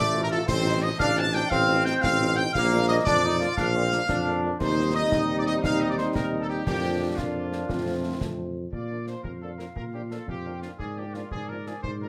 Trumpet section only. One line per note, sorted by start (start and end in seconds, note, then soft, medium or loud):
0.00 0.20 D5 loud
0.23 0.27 A#4 loud
0.31 0.47 A4 loud
0.47 0.80 C5 loud
0.82 0.99 D#5 loud
1.00 1.16 F5 loud
1.18 1.35 A5 loud
1.34 1.51 G5 loud
1.50 1.85 F5 loud
1.86 1.93 G5 loud
2.03 2.35 F5 loud
2.36 2.54 G5 loud
2.54 2.86 F5 loud
2.87 2.95 D#5 loud
3.05 3.53 D5 loud
3.57 4.43 F5 loud
4.60 4.92 C5 loud
4.95 5.35 D#5 loud
5.39 5.43 D5 loud
5.47 5.54 D#5 loud
5.65 5.80 F5 loud
5.81 5.89 D#5 loud
5.90 5.94 D5 medium
5.98 6.06 C5 medium
6.15 6.27 A#4 medium
6.41 6.49 A4 medium
6.48 6.65 G4 medium
6.66 7.14 G4 loud
7.16 8.20 F4 medium
8.73 9.05 D5 medium
9.08 9.24 C5 medium
9.23 9.31 A#4 medium
9.41 9.49 A4 medium
9.58 9.66 A#4 medium
9.75 9.83 A#4 medium
9.93 10.01 G4 medium
10.11 10.27 A4 soft
10.29 10.61 G4 medium
10.62 10.70 F4 medium
10.79 10.95 G#4 medium
10.98 11.15 G4 medium
11.14 11.32 F4 medium
11.32 11.48 G#4 medium
11.48 11.66 A#4 medium
11.68 11.84 G#4 medium
11.83 11.91 C5 medium
12.01 12.09 A#4 medium